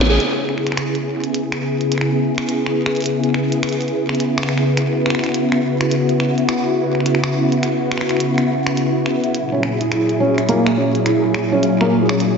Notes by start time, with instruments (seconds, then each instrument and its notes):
Already playing: analog synth bass A1, string machine C#3 A3 C#4 G#4
0.01 snare
0.09 felt piano G#4
0.20 string machine C#3 B3 E4 G#4, closed hi-hat
0.49 finger snap
0.58 finger snap
0.67 finger snap, closed hi-hat
0.72 finger snap
0.77 finger snap, closed hi-hat
0.95 closed hi-hat
1.24 closed hi-hat
1.34 closed hi-hat
1.52 finger snap, closed hi-hat
1.81 closed hi-hat
1.92 finger snap, closed hi-hat
1.98 finger snap
2.01 finger snap
2.38 finger snap
2.49 closed hi-hat
2.66 finger snap
2.86 finger snap
2.95 closed hi-hat
2.97 closed hi-hat
3.01 closed hi-hat
3.02 closed hi-hat
3.04 closed hi-hat
3.06 closed hi-hat
3.24 closed hi-hat
3.34 finger snap
3.52 closed hi-hat
3.63 finger snap, closed hi-hat
3.69 closed hi-hat
3.73 closed hi-hat
3.81 closed hi-hat
3.88 closed hi-hat
4.09 finger snap
4.15 closed hi-hat
4.20 closed hi-hat
4.38 finger snap
4.43 finger snap
4.49 finger snap
4.58 finger snap
4.77 string machine F#4, finger snap, closed hi-hat
5.06 finger snap
5.10 finger snap
5.15 finger snap
5.19 finger snap
5.24 finger snap, closed hi-hat
5.26 finger snap
5.29 finger snap
5.32 finger snap, closed hi-hat
5.52 finger snap
5.81 finger snap, closed hi-hat
5.91 closed hi-hat
6.09 closed hi-hat
6.20 finger snap
6.38 closed hi-hat
6.49 finger snap, closed hi-hat
6.95 finger snap
7.00 finger snap
7.06 finger snap, closed hi-hat
7.15 finger snap
7.24 finger snap
7.52 closed hi-hat
7.63 finger snap, closed hi-hat
7.92 finger snap
7.98 finger snap
8.01 finger snap
8.09 finger snap, closed hi-hat
8.17 finger snap, closed hi-hat
8.38 finger snap, closed hi-hat
8.66 finger snap, closed hi-hat
8.77 closed hi-hat
9.06 finger snap
9.24 closed hi-hat
9.34 string machine A#2 F#3 G#4, closed hi-hat
9.52 felt piano C#4
9.63 finger snap
9.81 felt piano E4, closed hi-hat
9.92 felt piano E4, finger snap, closed hi-hat
10.09 closed hi-hat
10.20 felt piano C#4
10.38 finger snap, closed hi-hat
10.49 felt piano A#3, closed hi-hat
10.66 finger snap, closed hi-hat
10.77 felt piano C#4
10.95 closed hi-hat
11.06 felt piano E4, finger snap, closed hi-hat
11.24 felt piano E4
11.34 finger snap
11.52 felt piano C#4
11.63 closed hi-hat
11.81 felt piano A#3, finger snap
12.09 felt piano C#4, finger snap
12.20 closed hi-hat